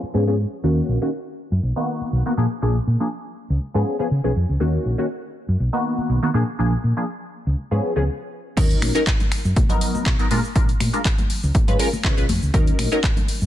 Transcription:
0.03 muted fingered electric bass stroke
0.14 fingered electric bass G#2, analog polysynth F3 B3 C#4 G#4
0.27 analog polysynth F3 B3 C#4 G#4
0.63 fingered electric bass D#2, analog polysynth D#3 A#3 C#4 F#4
0.89 fingered electric bass A#1
1.01 analog polysynth D#3 A#3 C#4 F#4
1.52 fingered electric bass F#2
1.63 fingered electric bass B1
1.76 analog polysynth D#3 A#3 B3 F#4
2.01 muted fingered electric bass stroke
2.13 fingered electric bass B1
2.26 analog polysynth D#3 A#3 B3 F#4
2.37 fingered electric bass A#2, analog polysynth F3 A#3 D4 G#4
2.62 fingered electric bass A#1, analog polysynth F3 A#3 D4 G#4
2.87 fingered electric bass A#2
3.00 analog polysynth F3 A#3 D4 G#4
3.50 fingered electric bass C#2
3.74 fingered electric bass G#2, analog polysynth F3 B3 C#4 G#4
3.99 analog polysynth F3 B3 C#4 G#4, muted fingered electric bass stroke
4.11 fingered electric bass C#3
4.24 fingered electric bass B1, analog polysynth F3 B3 C#4 G#4
4.36 fingered electric bass F2
4.49 fingered electric bass C#2
4.60 fingered electric bass D#2, analog polysynth D#3 A#3 C#4 F#4
4.86 fingered electric bass A#1
4.98 analog polysynth D#3 A#3 C#4 F#4
5.48 fingered electric bass F#2
5.60 fingered electric bass B1
5.73 analog polysynth D#3 A#3 B3 F#4
5.98 muted fingered electric bass stroke
6.09 fingered electric bass B1
6.22 analog polysynth D#3 A#3 B3 F#4
6.34 fingered electric bass A#2, analog polysynth F3 A#3 D4 G#4
6.59 fingered electric bass A#1, analog polysynth F3 A#3 D4 G#4
6.84 fingered electric bass A#2
6.97 analog polysynth F3 A#3 D4 G#4
7.47 fingered electric bass C#2
7.71 fingered electric bass G#2, analog polysynth F3 B3 C#4 G#4
7.96 fingered electric bass C#2, analog polysynth F3 B3 C#4 G#4
8.57 fingered electric bass D#2, analog polysynth F#3 C#4 D#4 A#4, kick, closed hi-hat, crash, shaker
8.70 closed hi-hat, shaker
8.82 fingered electric bass A#1, finger snap, open hi-hat, high conga
8.95 analog polysynth F#3 C#4 D#4 A#4, closed hi-hat, shaker
9.07 kick, clap, closed hi-hat, shaker
9.20 closed hi-hat, high conga, low conga, shaker
9.32 finger snap, open hi-hat
9.45 fingered electric bass F#2, shaker
9.56 fingered electric bass B1, kick, closed hi-hat, high conga, shaker
9.69 analog polysynth F#3 B3 D#4 A#4, closed hi-hat, low conga, shaker
9.81 open hi-hat
9.95 muted fingered electric bass stroke, high conga, shaker
10.06 fingered electric bass B1, kick, clap, closed hi-hat, shaker
10.19 analog polysynth F#3 B3 D#4 A#4, closed hi-hat, shaker
10.31 fingered electric bass A#2, analog polysynth G#3 D4 F4 A#4, open hi-hat, high conga
10.44 shaker
10.55 fingered electric bass A#1, analog polysynth G#3 D4 F4 A#4, kick, closed hi-hat, shaker
10.69 closed hi-hat, shaker
10.80 fingered electric bass A#2, finger snap, open hi-hat, high conga
10.93 analog polysynth G#3 D4 F4 A#4, closed hi-hat, shaker
11.05 kick, clap, closed hi-hat, shaker
11.18 closed hi-hat, high conga, low conga, shaker
11.30 open hi-hat
11.43 fingered electric bass C#2, shaker
11.54 kick, closed hi-hat, high conga, shaker
11.68 fingered electric bass G#2, analog polysynth G#3 C#4 F4 B4, closed hi-hat, low conga, shaker
11.79 analog polysynth G#3 C#4 F4 A#4, open hi-hat
11.93 muted fingered electric bass stroke, high conga, shaker
12.04 fingered electric bass C#3, analog polysynth G#3 C#4 F4 B4, kick, clap, closed hi-hat, shaker
12.17 fingered electric bass B1, analog polysynth G#3 C#4 F4 B4, closed hi-hat, shaker
12.29 fingered electric bass F2, open hi-hat, high conga
12.42 fingered electric bass C#2, shaker
12.54 fingered electric bass D#2, analog polysynth F#3 C#4 D#4 A#4, kick, closed hi-hat, shaker
12.66 closed hi-hat, shaker
12.79 fingered electric bass A#1, finger snap, open hi-hat, high conga
12.92 analog polysynth F#3 C#4 D#4 A#4, closed hi-hat, shaker
13.03 kick, clap, closed hi-hat, shaker
13.16 closed hi-hat, high conga, low conga, shaker
13.28 open hi-hat
13.41 fingered electric bass F#2, shaker

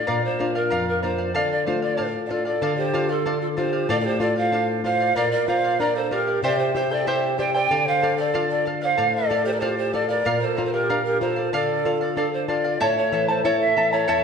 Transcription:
Already playing: pan flute D5
0.07 nylon-string guitar A#2, charango A#4 D5 F5
0.25 pan flute C5
0.39 nylon-string guitar A#3 D4 F4, charango A#4 D5 F5
0.55 pan flute A#4, charango D5 F5
0.70 nylon-string guitar F2, charango A#4 D5 F5
0.88 pan flute A#4
1.02 nylon-string guitar A#3 D4 F4, charango A#4 D5 F5, pan flute C5
1.18 charango D5 F5
1.34 nylon-string guitar D3, charango A4 D5 F5, pan flute D5
1.52 pan flute D5
1.66 nylon-string guitar A3 D4 F4, charango A4 D5 F5, pan flute C5
1.82 pan flute D5, charango D5 F5
1.97 nylon-string guitar A2, charango A4 D5 F5
2.26 nylon-string guitar A3, charango A4 D5, quena D5, pan flute F5
2.30 nylon-string guitar D4 F4, quena A4, pan flute D5, charango F5
2.45 quena A4, charango D5 F5, pan flute D5
2.62 nylon-string guitar D3, charango A4 D5 F5
2.77 quena G4, pan flute C5
2.93 nylon-string guitar F4, charango A4 D5 F5
3.09 quena F4, pan flute A4, charango D5 F5
3.26 nylon-string guitar D4, charango A4 D5 F5
3.41 quena F4, pan flute A4
3.57 nylon-string guitar F4, quena G4, charango A4 D5 F5, pan flute C5
3.73 charango D5 F5
3.89 nylon-string guitar A2, charango A4 D5 F5, quena A4, pan flute D5
4.00 quena A#4, pan flute D5
4.05 quena G4, pan flute C5
4.20 nylon-string guitar F4, charango A4 D5 F5, quena A4, pan flute D5
4.36 quena C5, charango D5 F5, pan flute F5
4.52 nylon-string guitar D4, charango A4 D5 F5
4.84 nylon-string guitar F4, charango A4 D5 F5, quena C5, pan flute F5
5.00 charango D5 F5
5.16 nylon-string guitar A#2, quena A#4, charango A#4 D5 F5, pan flute D5
5.31 quena A#4, pan flute D5
5.48 nylon-string guitar F4, charango A#4 D5 F5, quena C5, pan flute F5
5.64 charango D5 F5
5.80 nylon-string guitar D4, quena A#4, charango A#4 D5 F5, pan flute D5
5.96 quena A4, pan flute C5
6.11 nylon-string guitar F4, quena G4, charango A#4 D5 F5, pan flute A#4
6.27 charango D5 F5
6.43 nylon-string guitar C3, charango E4 G4 C5 E5 G5, quena G4, pan flute D5
6.59 quena G4, pan flute C5
6.75 charango E4 C5 E5 G5, quena G4, nylon-string guitar G4, pan flute C5
6.91 charango E4 C5 G5, quena A4, pan flute D5
7.07 nylon-string guitar E4, charango E4 G4 C5 E5 G5, quena G4, pan flute C5
7.38 charango E4 C5 E5 G5, nylon-string guitar G4, quena D5, pan flute G5
7.54 charango E4 C5 G5, quena D5, pan flute G5
7.71 nylon-string guitar D3, charango A4 D5 F5
7.86 quena C5, pan flute F5
8.02 charango A4 D5 F5, nylon-string guitar A4
8.18 quena A4, charango D5 F5, pan flute D5
8.34 nylon-string guitar F4, charango A4 D5 F5
8.50 quena A4, pan flute D5
8.65 charango A4 D5 F5, nylon-string guitar A4
8.81 quena D5, charango D5 F5, pan flute F5
8.86 quena C5
8.97 nylon-string guitar A2, charango A4 D5 F5
9.14 quena A4, pan flute D5
9.30 charango A4 D5 F5, nylon-string guitar A4
9.45 quena G4, pan flute C5, charango D5 F5
9.53 quena A#4, pan flute D5
9.60 nylon-string guitar F4, quena G4, charango A4 D5 F5, pan flute C5
9.78 quena G4, pan flute C5
9.93 charango A4 D5 F5, quena A4, nylon-string guitar A4, pan flute D5
10.09 quena A#4, pan flute D5, charango D5 F5
10.25 nylon-string guitar A#2, charango A#4 D5 F5
10.41 quena A4 A#4, pan flute C5
10.57 nylon-string guitar F4, charango A#4 D5 F5
10.65 quena A4, pan flute C5
10.73 quena G4, pan flute A#4, charango D5 F5
10.90 nylon-string guitar D4, charango A#4 D5 F5
11.05 quena G4, pan flute A#4
11.21 nylon-string guitar F4, charango A#4 D5 F5, quena A#4, pan flute C5
11.25 quena A4
11.36 charango D5 F5
11.53 nylon-string guitar D3, charango A4 D5 F5, quena A4 A#4, pan flute D5
11.85 nylon-string guitar F4, charango A4 D5 F5
12.01 charango D5 F5
12.17 nylon-string guitar D4, pan flute A4, charango A4 D5 F5
12.33 pan flute C5
12.48 nylon-string guitar F4, charango A4 D5 F5, pan flute D5
12.64 charango D5 F5
12.80 nylon-string guitar A2, charango E4 A4 C#5 E5 A5, pan flute C#5
12.98 pan flute C#5
13.12 nylon-string guitar E3, charango E4 A4 E5 A5
13.28 charango E4 A4 A5, pan flute C5
13.44 nylon-string guitar E4, charango E4 A4 C#5 E5 A5, pan flute C#5
13.61 pan flute E5
13.77 nylon-string guitar E3, charango E4 A4 E5 A5
13.92 charango E4 A4 A5, pan flute C#5
14.08 nylon-string guitar E2, charango E4 A4 C#5 E5 A5

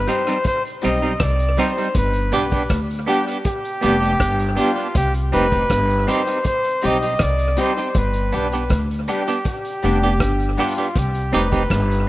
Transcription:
Already playing: flugelhorn B4
0.07 grand piano G3 C4 D#4 G4, clean electric guitar G3 C4 D#4, flugelhorn C5, closed hi-hat
0.27 clean electric guitar G3 C4 D#4, grand piano D#4 G4, cross-stick, closed hi-hat
0.44 flugelhorn C5, kick, closed hi-hat
0.65 closed hi-hat
0.82 upright bass B1, grand piano G3 C4 D#4 G4, clean electric guitar G3 C4 D#4, flugelhorn D#5, closed hi-hat
1.02 clean electric guitar G3 C4 D#4, closed hi-hat
1.20 upright bass C2, flugelhorn D5, kick, cross-stick, closed hi-hat
1.39 closed hi-hat
1.57 grand piano G3 C4 D#4 G4, clean electric guitar G3 C4 D#4, flugelhorn C5, closed hi-hat
1.78 clean electric guitar G3 C4 D#4, closed hi-hat
1.95 upright bass G1, flugelhorn B4, kick, closed hi-hat
2.13 closed hi-hat
2.32 upright bass B1, grand piano G3 B3 D4 G4, clean electric guitar B3 D4 G4, flugelhorn B4, closed hi-hat
2.51 clean electric guitar B3 D4 G4, kick, closed hi-hat
2.69 upright bass D2, kick, cross-stick, closed hi-hat
2.91 closed hi-hat
3.06 grand piano G3 B3 D4 G4, clean electric guitar B3 D4 G4, flugelhorn G4, closed hi-hat
3.27 clean electric guitar B3 D4 G4, grand piano D4 G4, closed hi-hat
3.45 flugelhorn G4, kick, closed hi-hat
3.65 closed hi-hat
3.81 upright bass F1, grand piano G3 B3 D4 G4, clean electric guitar B3 D4 G4, closed hi-hat
4.00 clean electric guitar B3 D4 G4, closed hi-hat
4.20 upright bass G1, kick, cross-stick, closed hi-hat
4.39 closed hi-hat
4.55 grand piano G3 B3 D4 G4, clean electric guitar B3 D4 G4, closed hi-hat
4.60 flugelhorn F4
4.76 clean electric guitar B3 D4 G4, closed hi-hat
4.95 upright bass C2, flugelhorn G4, kick, closed hi-hat
5.14 closed hi-hat
5.32 upright bass F1, grand piano G3 C4 D#4 G4, clean electric guitar C4 D#4 G4, flugelhorn B4, closed hi-hat
5.52 clean electric guitar C4 D#4 G4, kick, closed hi-hat
5.70 upright bass G1, kick, cross-stick, closed hi-hat
5.90 closed hi-hat
6.07 grand piano G3 C4 D#4 G4, clean electric guitar C4 D#4 G4, flugelhorn C5, cross-stick, closed hi-hat
6.27 clean electric guitar C4 D#4 G4, grand piano D#4 G4, closed hi-hat
6.44 flugelhorn C5, kick, closed hi-hat
6.64 closed hi-hat
6.81 upright bass B1, grand piano G3 C4 D#4 G4, clean electric guitar C4 D#4 G4, closed hi-hat
6.86 flugelhorn D#5
7.02 clean electric guitar C4 D#4 G4, closed hi-hat
7.19 upright bass C2, flugelhorn D5, kick, cross-stick, closed hi-hat
7.39 closed hi-hat
7.57 grand piano G3 C4 D#4 G4, clean electric guitar C4 D#4 G4, flugelhorn C5, closed hi-hat
7.78 clean electric guitar C4 D#4 G4, closed hi-hat
7.94 upright bass G1, flugelhorn B4, kick, closed hi-hat
8.13 closed hi-hat
8.32 upright bass B1, grand piano G3 B3 D4 G4, clean electric guitar B3 D4 G4, closed hi-hat
8.37 flugelhorn B4
8.52 clean electric guitar B3 D4 G4, closed hi-hat
8.70 upright bass D2, kick, cross-stick, closed hi-hat
8.91 closed hi-hat
9.08 grand piano G3 B3 D4 G4, clean electric guitar B3 D4 G4, flugelhorn G4, closed hi-hat
9.27 clean electric guitar B3 D4 G4, grand piano D4 G4, closed hi-hat
9.44 flugelhorn G4, kick, closed hi-hat
9.65 closed hi-hat
9.82 upright bass F1, grand piano G3 B3 D4 G4, clean electric guitar B3 D4 G4, closed hi-hat
10.03 clean electric guitar B3 D4 G4, closed hi-hat
10.20 upright bass G1, kick, cross-stick, closed hi-hat
10.40 closed hi-hat
10.53 flugelhorn G4
10.57 grand piano G3 B3 D4 G4, clean electric guitar B3 D4 G4, open hi-hat
10.61 flugelhorn F4
10.78 clean electric guitar B3 D4 G4, closed hi-hat
10.96 upright bass C2, flugelhorn G4, kick, closed hi-hat, cabasa
11.14 closed hi-hat, cabasa
11.32 upright bass F1, grand piano G3 C4 D#4 G4, clean electric guitar C4 D#4 G4, flugelhorn B4, closed hi-hat, cabasa
11.51 clean electric guitar C4 D#4 G4, kick, closed hi-hat, cabasa
11.70 upright bass G1, kick, cross-stick, closed hi-hat, cabasa
11.90 closed hi-hat, cabasa

